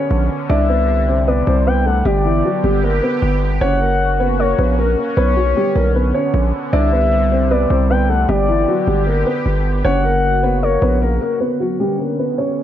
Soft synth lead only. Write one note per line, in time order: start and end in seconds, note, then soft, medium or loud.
0.50 1.24 E5 loud
1.28 1.64 D5 medium
1.67 1.85 G5 medium
1.86 2.04 F#5 medium
2.06 2.79 D5 loud
3.61 4.35 F#5 loud
4.39 4.76 C#5 medium
5.17 5.91 C#5 loud
6.73 7.47 E5 loud
7.51 7.88 D5 medium
7.90 8.08 G5 medium
8.09 8.28 F#5 medium
8.29 9.03 D5 loud
9.85 10.59 F#5 loud
10.63 10.99 C#5 medium